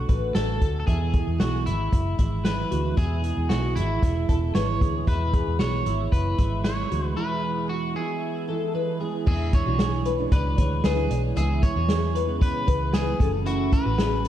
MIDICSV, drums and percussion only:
0, 0, Header, 1, 2, 480
1, 0, Start_track
1, 0, Tempo, 524476
1, 801, Time_signature, 4, 2, 24, 8
1, 13069, End_track
2, 0, Start_track
2, 0, Title_t, "Drums"
2, 79, Note_on_c, 9, 42, 71
2, 83, Note_on_c, 9, 36, 77
2, 171, Note_off_c, 9, 42, 0
2, 175, Note_off_c, 9, 36, 0
2, 318, Note_on_c, 9, 38, 84
2, 322, Note_on_c, 9, 42, 78
2, 409, Note_off_c, 9, 38, 0
2, 414, Note_off_c, 9, 42, 0
2, 563, Note_on_c, 9, 36, 72
2, 563, Note_on_c, 9, 42, 67
2, 654, Note_off_c, 9, 36, 0
2, 655, Note_off_c, 9, 42, 0
2, 802, Note_on_c, 9, 42, 65
2, 803, Note_on_c, 9, 36, 89
2, 893, Note_off_c, 9, 42, 0
2, 894, Note_off_c, 9, 36, 0
2, 1038, Note_on_c, 9, 42, 62
2, 1041, Note_on_c, 9, 36, 80
2, 1130, Note_off_c, 9, 42, 0
2, 1133, Note_off_c, 9, 36, 0
2, 1279, Note_on_c, 9, 38, 95
2, 1287, Note_on_c, 9, 42, 73
2, 1371, Note_off_c, 9, 38, 0
2, 1379, Note_off_c, 9, 42, 0
2, 1524, Note_on_c, 9, 42, 66
2, 1615, Note_off_c, 9, 42, 0
2, 1763, Note_on_c, 9, 36, 80
2, 1764, Note_on_c, 9, 42, 83
2, 1854, Note_off_c, 9, 36, 0
2, 1855, Note_off_c, 9, 42, 0
2, 2001, Note_on_c, 9, 42, 72
2, 2005, Note_on_c, 9, 36, 71
2, 2092, Note_off_c, 9, 42, 0
2, 2096, Note_off_c, 9, 36, 0
2, 2239, Note_on_c, 9, 38, 90
2, 2243, Note_on_c, 9, 42, 76
2, 2330, Note_off_c, 9, 38, 0
2, 2335, Note_off_c, 9, 42, 0
2, 2486, Note_on_c, 9, 42, 66
2, 2578, Note_off_c, 9, 42, 0
2, 2720, Note_on_c, 9, 42, 67
2, 2723, Note_on_c, 9, 36, 88
2, 2811, Note_off_c, 9, 42, 0
2, 2815, Note_off_c, 9, 36, 0
2, 2962, Note_on_c, 9, 42, 66
2, 3053, Note_off_c, 9, 42, 0
2, 3201, Note_on_c, 9, 38, 86
2, 3209, Note_on_c, 9, 42, 64
2, 3293, Note_off_c, 9, 38, 0
2, 3301, Note_off_c, 9, 42, 0
2, 3446, Note_on_c, 9, 42, 69
2, 3538, Note_off_c, 9, 42, 0
2, 3684, Note_on_c, 9, 38, 31
2, 3685, Note_on_c, 9, 36, 84
2, 3686, Note_on_c, 9, 42, 87
2, 3776, Note_off_c, 9, 36, 0
2, 3776, Note_off_c, 9, 38, 0
2, 3778, Note_off_c, 9, 42, 0
2, 3925, Note_on_c, 9, 42, 71
2, 3927, Note_on_c, 9, 36, 71
2, 4017, Note_off_c, 9, 42, 0
2, 4018, Note_off_c, 9, 36, 0
2, 4162, Note_on_c, 9, 38, 84
2, 4166, Note_on_c, 9, 42, 76
2, 4253, Note_off_c, 9, 38, 0
2, 4258, Note_off_c, 9, 42, 0
2, 4406, Note_on_c, 9, 36, 89
2, 4409, Note_on_c, 9, 42, 71
2, 4497, Note_off_c, 9, 36, 0
2, 4500, Note_off_c, 9, 42, 0
2, 4643, Note_on_c, 9, 42, 67
2, 4644, Note_on_c, 9, 36, 90
2, 4734, Note_off_c, 9, 42, 0
2, 4736, Note_off_c, 9, 36, 0
2, 4882, Note_on_c, 9, 42, 61
2, 4883, Note_on_c, 9, 36, 90
2, 4973, Note_off_c, 9, 42, 0
2, 4975, Note_off_c, 9, 36, 0
2, 5117, Note_on_c, 9, 38, 86
2, 5125, Note_on_c, 9, 42, 67
2, 5208, Note_off_c, 9, 38, 0
2, 5216, Note_off_c, 9, 42, 0
2, 5363, Note_on_c, 9, 42, 66
2, 5454, Note_off_c, 9, 42, 0
2, 5604, Note_on_c, 9, 36, 85
2, 5607, Note_on_c, 9, 42, 79
2, 5695, Note_off_c, 9, 36, 0
2, 5699, Note_off_c, 9, 42, 0
2, 5842, Note_on_c, 9, 42, 80
2, 5845, Note_on_c, 9, 36, 73
2, 5933, Note_off_c, 9, 42, 0
2, 5936, Note_off_c, 9, 36, 0
2, 6080, Note_on_c, 9, 38, 95
2, 6084, Note_on_c, 9, 42, 74
2, 6171, Note_off_c, 9, 38, 0
2, 6176, Note_off_c, 9, 42, 0
2, 6328, Note_on_c, 9, 42, 72
2, 6419, Note_off_c, 9, 42, 0
2, 8485, Note_on_c, 9, 36, 101
2, 8485, Note_on_c, 9, 49, 87
2, 8576, Note_off_c, 9, 49, 0
2, 8577, Note_off_c, 9, 36, 0
2, 8722, Note_on_c, 9, 42, 63
2, 8724, Note_on_c, 9, 36, 94
2, 8813, Note_off_c, 9, 42, 0
2, 8815, Note_off_c, 9, 36, 0
2, 8959, Note_on_c, 9, 38, 96
2, 8967, Note_on_c, 9, 42, 73
2, 9051, Note_off_c, 9, 38, 0
2, 9059, Note_off_c, 9, 42, 0
2, 9200, Note_on_c, 9, 42, 75
2, 9291, Note_off_c, 9, 42, 0
2, 9440, Note_on_c, 9, 38, 31
2, 9442, Note_on_c, 9, 42, 87
2, 9444, Note_on_c, 9, 36, 85
2, 9532, Note_off_c, 9, 38, 0
2, 9534, Note_off_c, 9, 42, 0
2, 9535, Note_off_c, 9, 36, 0
2, 9682, Note_on_c, 9, 42, 84
2, 9686, Note_on_c, 9, 36, 87
2, 9773, Note_off_c, 9, 42, 0
2, 9778, Note_off_c, 9, 36, 0
2, 9919, Note_on_c, 9, 38, 93
2, 9924, Note_on_c, 9, 42, 78
2, 10011, Note_off_c, 9, 38, 0
2, 10015, Note_off_c, 9, 42, 0
2, 10164, Note_on_c, 9, 42, 82
2, 10256, Note_off_c, 9, 42, 0
2, 10402, Note_on_c, 9, 42, 81
2, 10494, Note_off_c, 9, 42, 0
2, 10641, Note_on_c, 9, 42, 70
2, 10644, Note_on_c, 9, 36, 84
2, 10733, Note_off_c, 9, 42, 0
2, 10735, Note_off_c, 9, 36, 0
2, 10878, Note_on_c, 9, 38, 93
2, 10886, Note_on_c, 9, 42, 82
2, 10970, Note_off_c, 9, 38, 0
2, 10978, Note_off_c, 9, 42, 0
2, 11122, Note_on_c, 9, 42, 76
2, 11214, Note_off_c, 9, 42, 0
2, 11363, Note_on_c, 9, 36, 101
2, 11365, Note_on_c, 9, 42, 85
2, 11454, Note_off_c, 9, 36, 0
2, 11456, Note_off_c, 9, 42, 0
2, 11602, Note_on_c, 9, 42, 83
2, 11604, Note_on_c, 9, 36, 91
2, 11693, Note_off_c, 9, 42, 0
2, 11696, Note_off_c, 9, 36, 0
2, 11837, Note_on_c, 9, 38, 103
2, 11841, Note_on_c, 9, 42, 78
2, 11928, Note_off_c, 9, 38, 0
2, 11933, Note_off_c, 9, 42, 0
2, 12082, Note_on_c, 9, 36, 96
2, 12085, Note_on_c, 9, 42, 77
2, 12173, Note_off_c, 9, 36, 0
2, 12176, Note_off_c, 9, 42, 0
2, 12319, Note_on_c, 9, 42, 77
2, 12411, Note_off_c, 9, 42, 0
2, 12559, Note_on_c, 9, 42, 68
2, 12560, Note_on_c, 9, 36, 87
2, 12650, Note_off_c, 9, 42, 0
2, 12652, Note_off_c, 9, 36, 0
2, 12797, Note_on_c, 9, 38, 87
2, 12805, Note_on_c, 9, 42, 72
2, 12888, Note_off_c, 9, 38, 0
2, 12896, Note_off_c, 9, 42, 0
2, 13039, Note_on_c, 9, 42, 78
2, 13069, Note_off_c, 9, 42, 0
2, 13069, End_track
0, 0, End_of_file